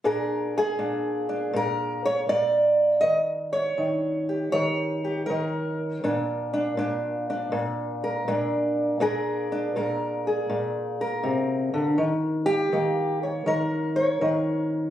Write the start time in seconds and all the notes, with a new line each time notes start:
0.04 A#2 D4 G#4 A#4
0.58 G#4
0.79 A#2 D4
1.29 D4
1.53 A#2 A#4
2.05 C#5
2.29 A#2 D5
3.01 D#3 D#5
3.53 C#5
3.78 D#3
4.29 G4
4.52 D#3 C#5
5.04 G4
5.26 D#3 A#4
6.04 A#2 D4
6.54 D4
6.77 A#2 D4
7.30 D4
7.52 A#2
8.04 A#4
8.28 A#2 D4
9.00 A#2 D4 G#4 A#4
9.52 D4
9.76 A#2 A#4
10.27 G#4
10.50 A#2
11.01 A#4
11.23 C3
11.74 D3
11.98 D#3
12.46 G4
12.72 D#3 A#3
13.23 C#5
13.46 D#3 A#4
13.96 C#5
14.21 D#3 A#4